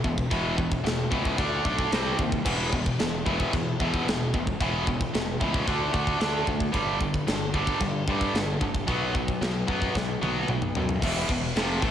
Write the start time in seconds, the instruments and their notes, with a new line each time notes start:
0.04 fingered electric bass E1, distorted electric guitar E2 B2, kick
0.18 kick
0.30 fingered electric bass E1, distorted electric guitar E2 B2 E3, kick, china
0.56 distorted electric guitar E2 B2, kick
0.72 kick
0.84 fingered electric bass E1, distorted electric guitar E2 B2, snare, china
1.11 fingered electric bass C#2, distorted electric guitar E2 B2 E3, kick
1.25 kick
1.38 fingered electric bass D2, distorted electric guitar D3 A3 D4, kick, china
1.65 fingered electric bass B1, distorted electric guitar D3 A3 D4, kick
1.79 kick
1.92 fingered electric bass C2, distorted electric guitar C3 G3 C4, snare, china
2.18 fingered electric bass D#2, distorted electric guitar C3 G3, kick
2.32 kick
2.45 fingered electric bass E1, distorted electric guitar E2 B2 E3, kick, china, crash
2.72 distorted electric guitar E2 B2, kick
2.86 kick
2.99 fingered electric bass E1, distorted electric guitar E2 B2, snare, china
3.25 distorted electric guitar E2 B2 E3, kick
3.40 kick
3.53 distorted electric guitar E2 B2, fingered electric bass E2, kick, china
3.80 distorted electric guitar E2 B2 E3, fingered electric bass E2, kick
3.94 kick
4.08 fingered electric bass E1, distorted electric guitar E2 B2, snare, china
4.34 fingered electric bass E1, distorted electric guitar E2 B2, kick
4.47 kick
4.61 fingered electric bass E1, distorted electric guitar E2 B2 E3, kick, china
4.87 distorted electric guitar E2 B2, kick
5.01 kick
5.14 fingered electric bass E1, distorted electric guitar E2 B2, snare, china
5.41 fingered electric bass C#2, distorted electric guitar E2 B2 E3, kick
5.54 kick
5.67 fingered electric bass D2, distorted electric guitar D3 A3 D4, kick, china
5.93 fingered electric bass D2, distorted electric guitar D3 A3 D4, kick
6.07 kick
6.20 fingered electric bass D2, distorted electric guitar D3 A3 D4, snare, china
6.46 fingered electric bass D2, distorted electric guitar D3 A3, kick
6.60 kick
6.72 fingered electric bass G1, distorted electric guitar G2 D3 G3, kick, china
7.00 distorted electric guitar G2 D3, kick
7.14 kick
7.27 fingered electric bass G1, distorted electric guitar G2 D3, snare, china
7.53 distorted electric guitar G2 D3 G3, kick
7.67 kick
7.81 fingered electric bass G2, distorted electric guitar G2 D3, kick, china
8.08 fingered electric bass G2, distorted electric guitar G2 D3 G3, kick
8.21 kick
8.34 fingered electric bass G1, distorted electric guitar G2 D3, snare, china
8.61 fingered electric bass G1, distorted electric guitar G2 D3, kick
8.75 kick
8.87 fingered electric bass B1, distorted electric guitar B2 F#3 B3, kick, china
9.14 distorted electric guitar B2 F#3, kick
9.28 kick
9.41 fingered electric bass B1, distorted electric guitar B2 F#3, snare, china
9.67 fingered electric bass F#2, distorted electric guitar B2 F#3 B3, kick
9.82 kick
9.94 fingered electric bass B1, distorted electric guitar B2 F#3, kick, snare
10.21 fingered electric bass B1, distorted electric guitar B2 F#3 B3, high tom
10.48 fingered electric bass B1, distorted electric guitar B2 F#3, mid tom
10.62 mid tom
10.75 fingered electric bass F#2, distorted electric guitar B2 F#3, floor tom
10.89 floor tom
11.02 fingered electric bass E1, distorted electric guitar E2 B2 E3, kick, crash
11.29 fingered electric bass E1, distorted electric guitar E2 B2, kick, crash
11.56 fingered electric bass F1, distorted electric guitar F2 C3 F3, snare, crash
11.82 fingered electric bass A1, distorted electric guitar A2 E3 A3, kick, crash